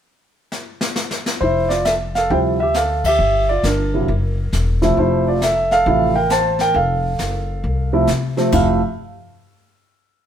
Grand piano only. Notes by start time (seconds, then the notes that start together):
1.41 E4 C5
1.69 F4 D5
1.85 A4 E5
2.15 A4 F5
2.30 C3 F3 G3 E4 C5 G5
2.60 G4 E5
2.76 A4 F5
3.06 G4 E5
3.49 F4 D5
3.64 D4 A#4
3.94 C3 F#3 A#3 E4
4.82 C3 F3 A3 E4
4.99 E4 C5
5.28 F4 D5
5.44 A4 E5
5.72 A4 F5
5.86 C3 F3 A3 E4
6.16 A#4 G5
6.31 C5 A5
6.61 A#4 G5
6.76 A4 F5
7.93 C3 F3 A3 E4
8.37 C3 F3 A3 C4
8.53 C3 F3 A3 E4 F5